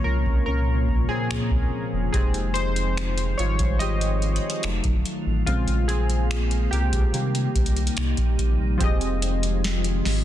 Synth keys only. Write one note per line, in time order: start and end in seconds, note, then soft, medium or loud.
0.00 2.16 C3 medium
0.00 2.15 C#3 medium
0.00 2.14 G#3 soft
0.00 2.16 F4 medium
0.00 2.15 C#5 loud
0.04 0.45 C#4 medium
0.04 0.43 A#4 medium
0.46 1.06 C#4 medium
0.46 1.05 A#4 medium
1.09 1.68 C4 medium
1.09 1.68 G#4 medium
2.13 3.35 G#3 medium
2.13 2.53 C4 medium
2.13 2.55 D#4 medium
2.13 3.34 G4 medium
2.13 2.56 G#4 medium
2.54 3.35 D#4 medium
2.54 3.40 C5 medium
3.38 3.76 G3 soft
3.38 3.76 G#3 soft
3.38 3.77 D#4 medium
3.38 3.78 F4 medium
3.38 3.77 C#5 medium
3.79 4.60 G4 medium
3.79 4.59 D#5 medium
4.63 5.19 F#3 medium
4.63 5.19 A3 soft
4.63 5.20 D#4 medium
5.46 6.68 C#3 medium
5.46 5.86 G#3 medium
5.46 5.89 C4 medium
5.46 5.85 F4 medium
5.88 6.69 C4 medium
5.88 6.74 G#4 loud
6.71 7.13 A#3 medium
6.71 8.34 G4 medium
7.13 7.69 D#3 medium
7.13 7.69 G3 soft
7.13 7.70 A#3 medium
8.77 10.24 F3 medium
8.77 10.24 C4 medium
8.77 10.24 G4 medium
8.82 10.24 G#4 medium
8.82 10.24 D#5 medium